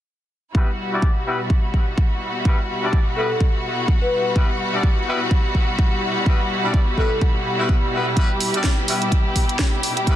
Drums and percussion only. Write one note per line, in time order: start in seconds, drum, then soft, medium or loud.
0.55 kick loud
1.02 kick loud
1.50 kick loud
1.74 kick medium
1.98 kick loud
2.45 kick loud
2.93 kick loud
3.40 kick loud
3.88 kick loud
4.36 kick loud
4.83 kick loud
5.31 kick loud
5.55 kick medium
5.79 kick loud
6.26 kick loud
6.74 kick loud
6.98 kick medium
7.21 kick loud
7.69 kick loud
8.17 kick loud
8.17 closed hi-hat soft
8.40 open hi-hat loud
8.54 closed hi-hat medium
8.64 kick loud
8.64 snare loud
8.64 closed hi-hat soft
8.88 open hi-hat medium
9.02 closed hi-hat medium
9.12 kick loud
9.12 closed hi-hat soft
9.36 kick medium
9.36 open hi-hat medium
9.49 closed hi-hat medium
9.59 kick loud
9.59 snare loud
9.59 closed hi-hat soft
9.83 open hi-hat medium
9.97 closed hi-hat medium
10.07 kick loud
10.07 closed hi-hat soft